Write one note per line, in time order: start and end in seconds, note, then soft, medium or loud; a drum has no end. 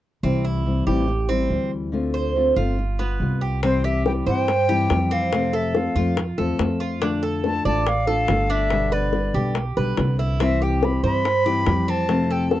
0.23 0.83 C2 medium
0.23 0.65 C3 medium
0.23 0.64 E3 medium
0.23 0.65 G3 medium
0.23 0.44 C4 medium
0.23 0.66 C4 medium
0.23 0.66 E4 medium
0.45 0.86 E4 medium
0.66 0.86 E3 soft
0.66 0.86 G3 soft
0.66 0.86 C4 soft
0.66 0.86 E4 soft
0.87 1.47 A1 medium
0.87 1.07 E3 medium
0.87 1.07 G3 medium
0.87 1.07 C4 medium
0.87 1.07 E4 medium
0.87 1.28 G4 medium
1.08 muted nylon-string guitar stroke medium
1.29 1.49 G3 soft
1.29 1.70 C4 medium
1.29 1.50 C4 medium
1.29 1.50 E4 medium
1.50 2.50 D2 medium
1.50 1.92 E3 soft
1.50 1.92 G3 soft
1.50 1.92 C4 soft
1.50 1.93 E4 soft
1.92 2.34 D3 medium
1.92 2.35 A3 medium
1.92 2.35 C4 medium
1.92 2.35 F4 medium
2.14 2.55 C5 medium
2.35 2.56 D3 soft
2.35 2.56 A3 soft
2.35 2.56 C4 soft
2.35 2.55 F4 soft
2.56 3.16 G1 medium
2.56 2.78 A3 soft
2.56 2.77 C4 medium
2.56 2.98 F4 medium
2.56 2.77 F4 medium
2.78 muted nylon-string guitar stroke soft
2.99 3.40 B3 medium
2.99 3.20 B3 soft
2.99 3.20 F4 medium
3.20 4.20 C2 medium
3.20 3.62 G3 soft
3.20 3.62 B3 soft
3.20 3.63 F4 soft
3.41 3.62 G4 medium
3.63 4.04 C3 medium
3.63 4.04 E3 medium
3.63 4.05 G3 medium
3.63 3.83 C4 medium
3.63 4.05 C4 medium
3.63 4.05 E4 medium
3.63 3.86 C5 medium
3.63 high bongo medium
3.84 4.25 G4 medium
3.84 4.06 E5 medium
3.84 high bongo soft
4.06 4.26 E3 soft
4.06 4.26 G3 soft
4.06 4.26 C4 soft
4.06 4.26 E4 soft
4.06 4.12 G5 medium
4.06 high bongo medium
4.26 4.86 G2 medium
4.26 4.48 E3 medium
4.26 4.47 G3 medium
4.26 4.47 C4 medium
4.26 4.47 E4 medium
4.26 4.67 C5 medium
4.26 5.14 G5 loud
4.48 muted nylon-string guitar stroke medium
4.48 high bongo medium
4.69 4.89 E3 medium
4.69 4.89 G3 medium
4.69 4.89 C4 medium
4.69 4.89 E4 medium
4.69 5.10 G4 medium
4.69 high bongo soft
4.90 5.90 F2 medium
4.90 5.31 E3 soft
4.90 5.32 G3 soft
4.90 5.32 C4 soft
4.90 5.32 E4 medium
4.90 high bongo medium
4.90 low bongo medium
5.11 5.52 C4 medium
5.11 5.57 F5 medium
5.11 high bongo soft
5.33 5.74 C3 medium
5.33 5.74 F3 medium
5.33 5.74 A3 medium
5.33 5.74 C4 medium
5.33 5.75 F4 medium
5.33 high bongo medium
5.53 5.94 A4 medium
5.53 5.78 E5 medium
5.53 high bongo soft
5.75 5.95 F3 soft
5.75 5.95 A3 soft
5.75 5.95 C4 soft
5.75 5.95 F4 soft
5.75 6.18 F5 medium
5.75 high bongo medium
5.95 6.35 F2 medium
5.95 6.17 F3 medium
5.95 6.17 A3 medium
5.95 6.17 C4 medium
5.95 6.37 F4 medium
5.95 6.16 F4 medium
6.17 muted nylon-string guitar stroke medium
6.17 high bongo medium
6.38 6.58 E2 medium
6.38 6.58 F3 medium
6.38 6.59 A3 medium
6.38 6.59 C4 soft
6.38 6.58 F4 medium
6.38 6.79 A4 medium
6.38 high bongo soft
6.59 7.59 F2 medium
6.59 7.01 F3 soft
6.59 7.01 A3 soft
6.59 7.01 C4 soft
6.59 7.01 F4 soft
6.59 high bongo medium
6.59 low bongo medium
6.80 7.01 F4 medium
6.80 high bongo soft
7.01 7.43 D3 medium
7.01 7.43 A3 medium
7.01 7.22 D4 medium
7.01 7.43 D4 medium
7.01 7.44 F4 medium
7.01 high bongo medium
7.23 7.64 A4 medium
7.23 high bongo soft
7.44 7.64 D3 soft
7.44 7.65 A3 soft
7.44 7.65 D4 soft
7.44 7.64 F4 soft
7.44 7.64 A5 medium
7.44 high bongo medium
7.65 8.25 A1 medium
7.65 7.86 A3 medium
7.65 7.86 D4 medium
7.65 7.85 F4 medium
7.65 8.06 D5 medium
7.65 7.89 A5 medium
7.87 8.53 F5 medium
7.87 muted nylon-string guitar stroke medium
7.87 high bongo medium
8.07 8.29 A3 soft
8.07 8.28 D4 soft
8.07 8.28 F4 medium
8.07 8.48 A4 medium
8.07 high bongo soft
8.28 9.28 G1 medium
8.28 8.70 D3 soft
8.28 8.71 A3 medium
8.28 8.71 D4 soft
8.28 8.71 F4 soft
8.28 high bongo medium
8.28 low bongo medium
8.50 8.91 D4 medium
8.50 8.95 E5 medium
8.50 high bongo soft
8.70 9.12 B2 medium
8.70 9.13 D3 medium
8.70 9.13 G3 medium
8.70 9.13 B3 medium
8.70 9.13 G4 medium
8.70 high bongo medium
8.92 9.33 B4 medium
8.92 9.56 D5 medium
8.92 high bongo soft
9.13 9.34 D3 soft
9.13 9.34 G3 soft
9.13 9.34 B3 soft
9.13 9.34 G4 soft
9.13 high bongo medium
9.34 9.74 B1 medium
9.34 9.55 D3 soft
9.34 9.55 G3 medium
9.34 9.55 B3 medium
9.34 9.75 G4 medium
9.34 9.55 G4 medium
9.55 muted nylon-string guitar stroke medium
9.55 high bongo medium
9.77 9.96 B1 medium
9.77 9.97 D3 soft
9.77 9.98 G3 medium
9.77 9.97 B3 medium
9.77 9.97 G4 medium
9.77 10.18 B4 medium
9.77 high bongo soft
9.97 10.97 C2 medium
9.97 10.39 D3 soft
9.97 10.39 G3 soft
9.97 10.40 B3 soft
9.97 10.40 G4 soft
9.97 high bongo medium
9.97 low bongo medium
10.19 10.40 E4 medium
10.19 high bongo soft
10.40 10.81 C3 medium
10.40 10.81 E3 medium
10.40 10.82 G3 medium
10.40 10.61 C4 medium
10.40 10.82 C4 medium
10.40 10.82 E4 medium
10.40 10.64 E5 medium
10.40 high bongo medium
10.62 11.02 G4 medium
10.62 10.86 G5 medium
10.62 high bongo soft
10.83 11.03 E3 soft
10.83 11.03 G3 soft
10.83 11.03 C4 soft
10.83 11.03 E4 soft
10.83 11.05 B5 medium
10.83 high bongo medium
11.03 11.63 G2 medium
11.03 11.24 E3 medium
11.03 11.25 G3 medium
11.03 11.24 C4 medium
11.03 11.24 E4 medium
11.03 11.45 C5 medium
11.03 11.92 B5 loud
11.25 muted nylon-string guitar stroke medium
11.25 high bongo medium
11.46 11.66 E3 soft
11.46 11.66 G3 medium
11.46 11.66 C4 medium
11.46 11.66 E4 medium
11.46 11.87 G4 medium
11.46 high bongo soft
11.67 12.60 F2 medium
11.67 12.08 E3 soft
11.67 12.09 G3 soft
11.67 12.09 C4 soft
11.67 12.09 E4 soft
11.67 high bongo medium
11.67 low bongo medium
11.88 12.29 C4 medium
11.88 12.33 A5 medium
11.88 high bongo soft
12.09 12.50 C3 medium
12.09 12.50 F3 medium
12.09 12.50 A3 medium
12.09 12.51 C4 medium
12.09 12.51 F4 medium
12.09 high bongo medium
12.31 12.60 A4 medium
12.31 12.52 G5 medium
12.31 high bongo soft
12.51 12.60 F3 soft
12.51 12.60 A3 soft
12.51 12.60 C4 soft
12.51 12.60 F4 soft
12.51 12.60 A5 medium
12.51 high bongo medium